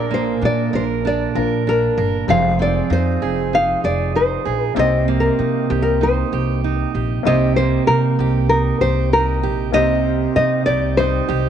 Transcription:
Already playing: upright bass A#1, steel-string acoustic guitar A#2 D4 A#4, upright piano D4 F4 G#4 A#4, nylon-string guitar D5
0.11 steel-string acoustic guitar A#3, nylon-string guitar C5
0.42 upright bass A#2, steel-string acoustic guitar D4, nylon-string guitar D5
0.73 upright bass A#1, steel-string acoustic guitar A#4, nylon-string guitar C5
1.05 steel-string acoustic guitar D4, nylon-string guitar D5
1.35 upright bass A#1, upright piano D4 F4 A#4, steel-string acoustic guitar A#4
1.67 steel-string acoustic guitar D4, nylon-string guitar A#4
1.98 upright bass G1, steel-string acoustic guitar A#4
2.27 upright bass F1, steel-string acoustic guitar F3 G#4, upright piano G3 C4 D#4 F4 C5, nylon-string guitar F5
2.34 upright piano G#3
2.59 steel-string acoustic guitar C4, nylon-string guitar D5
2.90 upright bass F2, steel-string acoustic guitar D#4, nylon-string guitar C5
3.22 upright bass F1, steel-string acoustic guitar G#4
3.53 steel-string acoustic guitar D#4, nylon-string guitar F5
3.84 upright bass F1, steel-string acoustic guitar G#4, nylon-string guitar D5
4.16 steel-string acoustic guitar D#4, nylon-string guitar C5
4.45 upright bass A#1, steel-string acoustic guitar G#4
4.64 nylon-string guitar A#4
4.75 upright bass C2, steel-string acoustic guitar C3 G4, upright piano A#3 C4 D#4 G4
4.79 upright piano C5, nylon-string guitar D#5
5.08 steel-string acoustic guitar A#3
5.20 nylon-string guitar A#4
5.39 upright bass C3, steel-string acoustic guitar D#4
5.70 upright bass C2, steel-string acoustic guitar G4
5.82 nylon-string guitar A#4
6.01 steel-string acoustic guitar D#4, nylon-string guitar C5
6.32 upright bass C2, steel-string acoustic guitar G4
6.64 steel-string acoustic guitar D#4
6.95 upright bass A#1, steel-string acoustic guitar G4
7.23 upright bass C2, steel-string acoustic guitar C3, upright piano A#3 C4 D#4 G4 C5, nylon-string guitar D#5
7.27 steel-string acoustic guitar G4
7.56 steel-string acoustic guitar A#3, nylon-string guitar C5
7.87 upright bass C3, steel-string acoustic guitar D#4, nylon-string guitar A#4
8.19 upright bass C2, steel-string acoustic guitar G4
8.49 steel-string acoustic guitar D#4, nylon-string guitar A#4
8.81 upright bass C2, steel-string acoustic guitar G4, nylon-string guitar C5
9.13 steel-string acoustic guitar D#4, nylon-string guitar A#4
9.43 upright bass A#1, steel-string acoustic guitar G4
9.72 upright bass C2, steel-string acoustic guitar C3 G4, upright piano A#3 C4 D#4 G4 C5, nylon-string guitar D#5
10.36 upright bass C3, steel-string acoustic guitar D#4, nylon-string guitar D#5
10.66 upright bass C2, steel-string acoustic guitar G4, nylon-string guitar D5
10.97 upright piano G3 C4 D#4 G4 D#5, steel-string acoustic guitar D#4, nylon-string guitar C5
11.29 upright bass C2, steel-string acoustic guitar G4

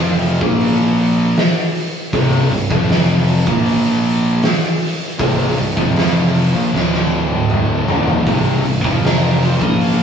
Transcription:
Already playing: fingered electric bass F1, distorted electric guitar F2 C3 F3
0.22 open hi-hat
0.41 fingered electric bass A#1, distorted electric guitar A#2 F3 A#3, kick
0.60 open hi-hat
0.99 open hi-hat
1.36 snare, open hi-hat
1.75 open hi-hat
2.13 fingered electric bass C1, distorted electric guitar C2 G2 C3, kick, open hi-hat
2.51 fingered electric bass C1, distorted electric guitar C2 G2, open hi-hat
2.69 fingered electric bass F1, distorted electric guitar F2 C3 F3, kick
2.89 snare, open hi-hat
3.28 open hi-hat
3.45 fingered electric bass A#1, distorted electric guitar A#2 F3 A#3, kick
3.66 open hi-hat
4.04 open hi-hat
4.42 snare, open hi-hat
4.81 open hi-hat
5.18 fingered electric bass C1, distorted electric guitar C2 G2 C3, kick, open hi-hat
5.57 fingered electric bass C1, distorted electric guitar C2 G2, open hi-hat
5.76 fingered electric bass F1, distorted electric guitar F2 C3 F3, kick
5.96 snare, open hi-hat
6.35 open hi-hat
6.53 fingered electric bass A#1, distorted electric guitar A#2 F3
6.72 fingered electric bass D1, distorted electric guitar D2 A2 D3, snare
6.94 snare
7.31 high tom
7.50 mid tom
7.88 fingered electric bass D#1, distorted electric guitar D#2 A#2 D#3, floor tom
8.07 floor tom
8.27 fingered electric bass C1, distorted electric guitar C2 G2 C3, kick, open hi-hat
8.65 fingered electric bass C1, distorted electric guitar C2 G2, open hi-hat
8.84 fingered electric bass F1, distorted electric guitar F2 C3 F3, kick
9.04 lead electric guitar A#4, snare, open hi-hat
9.42 lead electric guitar C5, open hi-hat
9.61 fingered electric bass A#1, distorted electric guitar A#2 F3 A#3, lead electric guitar D#5, kick
9.81 lead electric guitar F5, open hi-hat

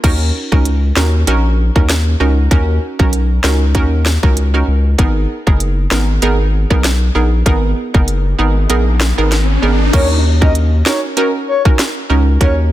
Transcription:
0.04 sub bass D#2, synth pluck C#4 D#4 F#4 A#4, kick, closed hi-hat, crash
0.52 sub bass C#2, synth pluck C#4 D#4 F#4 A#4, kick
0.65 closed hi-hat
0.96 sub bass D#2, synth pluck C#4 D#4 F#4 A#4, snare
1.27 sub bass A#1, synth pluck C#4 D#4 F#4 A#4, closed hi-hat
1.76 sub bass D#2, synth pluck C#4 D#4 F#4 A#4, kick
1.89 snare, closed hi-hat
2.20 sub bass C#2, synth pluck C#4 D#4 F#4 A#4
2.51 sub bass D#2, synth pluck C#4 D#4 F#4 A#4, kick, closed hi-hat
2.99 sub bass B1, synth pluck C#4 D#4 F#4 A#4, kick
3.13 closed hi-hat
3.44 sub bass C#2, synth pluck C#4 D#4 F#4 A#4, snare
3.75 sub bass D#2, synth pluck C#4 D#4 F#4 A#4, kick, closed hi-hat
4.06 snare
4.23 sub bass C#2, synth pluck C#4 D#4 F#4 A#4, kick
4.37 closed hi-hat
4.54 synth pluck C#4 D#4 F#4 A#4
4.68 sub bass C#2
4.98 sub bass G#1, synth pluck B3 D#4 G#4 A#4, kick, closed hi-hat
5.47 sub bass F#1, synth pluck B3 D#4 G#4 A#4, kick
5.60 closed hi-hat
5.91 sub bass G#1, synth pluck B3 D#4 G#4 A#4, snare
6.22 sub bass G#1, synth pluck B3 D#4 G#4 A#4, closed hi-hat
6.70 sub bass B1, synth pluck B3 D#4 G#4 A#4, kick
6.84 snare, closed hi-hat
7.15 sub bass A#1, synth pluck B3 D#4 G#4 A#4
7.46 sub bass G#1, synth pluck B3 D#4 G#4 A#4, kick, closed hi-hat, riser
7.94 sub bass F#1, synth pluck B3 D#4 G#4 A#4, kick
8.08 closed hi-hat
8.39 sub bass G#1, synth pluck B3 D#4 G#4 A#4
8.70 sub bass A#1, synth pluck B3 D#4 G#4 A#4, closed hi-hat
9.01 snare
9.18 sub bass G#1, synth pluck B3 D#4 G#4 A#4
9.32 snare, closed hi-hat
9.62 sub bass G#1, synth pluck B3 D#4 G#4 A#4
9.93 sub bass D#2, synth pluck C#4 D#4 F#4 A#4, soft synth lead C#5, kick, closed hi-hat, crash
10.41 synth pluck C#4 D#4 F#4 A#4, soft synth lead D#5, kick
10.55 closed hi-hat
10.86 synth pluck C#4 D#4 F#4 A#4, soft synth lead C#5, snare
11.17 synth pluck C#4 D#4 F#4 A#4, soft synth lead A#4, closed hi-hat
11.48 soft synth lead C#5
11.65 synth pluck C#4 D#4 F#4 A#4, kick
11.79 snare, closed hi-hat
12.10 sub bass C#2, synth pluck C#4 D#4 F#4 A#4
12.41 sub bass D#2, synth pluck C#4 D#4 F#4 A#4, soft synth lead C#5, kick, closed hi-hat

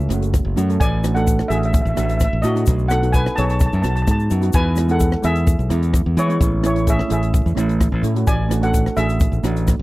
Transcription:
Already playing: steel pan G#4 E5
0.00 shaker
0.09 fingered electric bass F#1, steel pan A3 C#4 F#4, cross-stick, closed hi-hat, shaker
0.22 closed hi-hat, shaker
0.34 kick, cross-stick, closed hi-hat, shaker
0.45 fingered electric bass F#1
0.56 fingered electric bass F#2, steel pan A3 C#4 F#4, closed hi-hat, shaker
0.69 steel pan A3 C#4 A4, closed hi-hat, shaker
0.80 fingered electric bass A1, steel pan D5 G#5, kick, closed hi-hat, shaker
1.04 steel pan A3 D4 F#4, cross-stick, closed hi-hat, shaker
1.15 steel pan A3 D4 F#4 A4 F#5, closed hi-hat, shaker
1.27 kick, closed hi-hat, shaker
1.39 cross-stick, shaker
1.48 fingered electric bass A1, steel pan A3 D4 F#4 G#4 E5, closed hi-hat, shaker
1.58 steel pan E5
1.63 steel pan E5, closed hi-hat
1.73 steel pan E5, kick, closed hi-hat, shaker
1.81 fingered electric bass A1, steel pan E5
1.86 steel pan E5, shaker
1.95 fingered electric bass A1, steel pan A3 D4 F#4 E5, cross-stick, closed hi-hat, shaker
2.05 steel pan E5
2.09 steel pan E5, closed hi-hat, shaker
2.17 steel pan E5, kick, cross-stick, closed hi-hat, shaker
2.24 steel pan E5
2.33 fingered electric bass A1
2.42 fingered electric bass A2, steel pan A3 D4 F#4 D#5, closed hi-hat, shaker
2.55 steel pan A3 D4 F#4, closed hi-hat, shaker
2.66 fingered electric bass B1, kick, closed hi-hat, shaker
2.79 shaker
2.88 steel pan B3 D#4 F#4 A4 F#5, cross-stick, closed hi-hat, shaker
3.02 steel pan B3 D#4 F#4, closed hi-hat
3.13 steel pan B4 G#5, kick, closed hi-hat, shaker
3.26 cross-stick, shaker
3.36 fingered electric bass B1, steel pan B3 D#4 G#4 C#5 A5, closed hi-hat, shaker
3.45 steel pan A5
3.49 steel pan A5, closed hi-hat, shaker
3.60 steel pan A5, kick, closed hi-hat, shaker
3.66 steel pan A5
3.73 fingered electric bass F#2, steel pan A5, shaker
3.82 fingered electric bass B1, steel pan B3 D#4 F#4 A5, cross-stick, closed hi-hat, shaker
3.89 steel pan A5
3.95 steel pan A5, closed hi-hat, shaker
4.02 steel pan A5
4.07 fingered electric bass G#2, steel pan A5, kick, cross-stick, closed hi-hat, shaker
4.20 shaker
4.30 fingered electric bass F#2, steel pan B3 D#4 F#4, closed hi-hat, shaker
4.41 steel pan B3 D#4 F#4, closed hi-hat, shaker
4.53 fingered electric bass E2, steel pan B4 G#5, kick, closed hi-hat, shaker
4.76 steel pan G#3 B3 E4, cross-stick, closed hi-hat, shaker
4.88 steel pan G#3 B3 E4 A4 F#5, closed hi-hat, shaker
5.00 kick, closed hi-hat, shaker
5.12 cross-stick, shaker
5.22 fingered electric bass E2, steel pan G#3 B3 E4 G#4 E5, closed hi-hat, shaker
5.36 closed hi-hat, shaker
5.47 kick, closed hi-hat, shaker
5.59 fingered electric bass B1, shaker
5.69 fingered electric bass E2, steel pan G#3 B3 E4, cross-stick, closed hi-hat, shaker
5.83 closed hi-hat, shaker
5.93 kick, cross-stick, closed hi-hat, shaker
6.06 fingered electric bass E2
6.17 fingered electric bass E3, steel pan G#3 B3 E4 C#5, closed hi-hat, shaker
6.28 steel pan G#3 B3 E4, closed hi-hat, shaker
6.40 fingered electric bass A1, kick, closed hi-hat, shaker
6.62 steel pan A3 C#4 E4, cross-stick, closed hi-hat, shaker
6.66 steel pan C#5
6.74 steel pan A3 C#4 E4, closed hi-hat, shaker
6.87 steel pan G#4 E5, kick, closed hi-hat, shaker
6.99 cross-stick, shaker
7.08 fingered electric bass A1, steel pan A3 C#4 E4 G#4, closed hi-hat, shaker
7.12 steel pan E5
7.23 closed hi-hat, shaker
7.34 kick, closed hi-hat, shaker
7.46 fingered electric bass E2, shaker
7.55 fingered electric bass A1, steel pan A3 C#4 E4, cross-stick, closed hi-hat, shaker
7.69 closed hi-hat, shaker
7.81 kick, cross-stick, closed hi-hat, shaker
7.92 fingered electric bass A1
8.02 fingered electric bass A2, steel pan A3 C#4 E4, closed hi-hat, shaker
8.15 steel pan A3 C#4 F#4, closed hi-hat, shaker
8.27 fingered electric bass A1, steel pan D5 G#5, kick, closed hi-hat, shaker
8.49 steel pan A3 D4 F#4, cross-stick, closed hi-hat, shaker
8.61 steel pan A3 D4 F#4 A4 F#5, closed hi-hat, shaker
8.74 kick, closed hi-hat, shaker
8.86 cross-stick, shaker
8.97 fingered electric bass A1, steel pan A3 D4 F#4 G#4 E5, closed hi-hat, shaker
9.09 closed hi-hat, shaker
9.20 kick, closed hi-hat, shaker
9.32 fingered electric bass A1, shaker
9.43 fingered electric bass A1, steel pan A3 D4 F#4, cross-stick, closed hi-hat, shaker
9.56 closed hi-hat, shaker
9.68 kick, cross-stick, closed hi-hat, shaker

